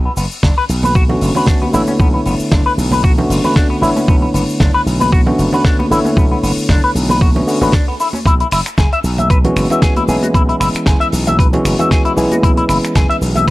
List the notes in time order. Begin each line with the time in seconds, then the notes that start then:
0.05 B3
0.17 F#1 B3, open hi-hat, shaker
0.32 shaker
0.43 F#1 D4, kick, snare, shaker
0.58 B4
0.69 B1, open hi-hat, shaker
0.83 B4, high conga, low conga, shaker
0.95 F#4, kick, shaker
1.09 D3 A3 B3 C#4 F#4, low conga
1.21 F#1, open hi-hat, shaker
1.35 D3 A3 B3 C#4 F#4 B4, low conga, shaker
1.46 D4, kick, snare, shaker
1.62 B3, high conga
1.73 A1 D3 A3 B3 E4 C#5, open hi-hat, shaker
1.87 C#4, high conga, shaker
2.00 B1 B3, kick, shaker
2.14 B3
2.26 F#1 B3, open hi-hat, shaker
2.40 muted slap bass stroke, shaker
2.52 F#1 D4, kick, snare, shaker
2.66 B4
2.78 B1, open hi-hat, shaker
2.91 B4, high conga, low conga, shaker
3.04 F#4, kick, shaker
3.17 D3 A3 B3 C#4 F#4, low conga
3.29 F#1, open hi-hat, shaker
3.44 D3 A3 B3 C#4 F#4 B4, high conga, low conga, shaker
3.56 D4, kick, snare, shaker
3.70 B3
3.81 A1 D3 A3 B3 E4 C#5, open hi-hat, shaker
3.96 C#4, high conga, shaker
4.08 B1 B3, kick, shaker
4.22 B3
4.34 F#1 B3, open hi-hat, shaker
4.49 shaker
4.60 F#1 D4, kick, snare, shaker
4.74 B4
4.86 B1, open hi-hat, shaker
5.00 B4, high conga, low conga, shaker
5.12 F#4, kick, shaker
5.26 D3 A3 B3 C#4 F#4, low conga
5.39 F#1, open hi-hat, shaker
5.53 D3 A3 B3 C#4 F#4 B4, low conga, shaker
5.65 D4, kick, snare, shaker
5.79 B3, high conga
5.90 A1 D3 A3 B3 E4 C#5, open hi-hat, shaker
6.05 C#4, high conga, shaker
6.17 B1 B3, kick, shaker
6.32 B3
6.43 F#1 B3, open hi-hat, shaker
6.58 shaker
6.69 F#1 D4, kick, snare, shaker
6.84 B4
6.95 B1, open hi-hat, shaker
7.09 B4, high conga, low conga, shaker
7.21 F#4, kick, shaker
7.35 D3 A3 B3 C#4 F#4, low conga
7.47 D3 A3 B3 C#4 F#4, open hi-hat, shaker
7.61 A1 D3 A3 B3 C#4 F#4 B4, high conga, low conga, shaker
7.72 D4, kick, snare, shaker
7.88 B3
8.00 E4, open hi-hat, shaker
8.13 C#4, high conga, shaker
8.26 B1 E4, kick, closed hi-hat, shaker
8.40 E4, closed hi-hat
8.51 F#1 E4, finger snap, open hi-hat, shaker
8.66 finger snap, closed hi-hat, shaker
8.78 F#1 G#4, kick, snare, closed hi-hat, shaker
8.93 E5, closed hi-hat
9.04 B1, open hi-hat, shaker
9.18 E5, closed hi-hat, high conga, low conga, shaker
9.30 B4, kick, closed hi-hat, shaker
9.44 E3 G#3 B3 C#4 F#4, closed hi-hat, low conga
9.56 F#1, finger snap, open hi-hat, shaker
9.70 E3 G#3 B3 C#4 F#4 E5, closed hi-hat, low conga, shaker
9.82 G#4, kick, snare, closed hi-hat, shaker
9.96 E4, closed hi-hat, high conga
10.08 B1 E3 G#3 B3 C#4 E4 G#4, open hi-hat, shaker
10.23 F#4, closed hi-hat, high conga, shaker
10.34 B1 E4, kick, closed hi-hat, shaker
10.49 E4, closed hi-hat
10.60 F#1 E4, finger snap, open hi-hat, shaker
10.74 finger snap, muted slap bass stroke, closed hi-hat, shaker
10.86 F#1 G#4, kick, snare, closed hi-hat, shaker
11.00 E5, closed hi-hat
11.12 B1, open hi-hat, shaker
11.27 E5, closed hi-hat, high conga, low conga, shaker
11.39 B4, kick, closed hi-hat, shaker
11.53 E3 G#3 B3 C#4 F#4, closed hi-hat, low conga
11.64 F#1, finger snap, open hi-hat, shaker
11.79 E3 G#3 B3 C#4 F#4 E5, closed hi-hat, high conga, low conga, shaker
11.91 G#4, kick, snare, closed hi-hat, shaker
12.05 E4, closed hi-hat
12.16 B1 E3 G#3 B3 C#4 E4 G#4, open hi-hat, shaker
12.32 F#4, closed hi-hat, high conga, shaker
12.43 B1 E4, kick, closed hi-hat, shaker
12.57 E4, closed hi-hat
12.69 F#1 E4, finger snap, open hi-hat, shaker
12.84 finger snap, closed hi-hat, shaker
12.95 F#1 G#4, kick, snare, closed hi-hat, shaker
13.10 E5, closed hi-hat
13.21 B1, open hi-hat, shaker
13.35 E5, closed hi-hat, high conga, low conga, shaker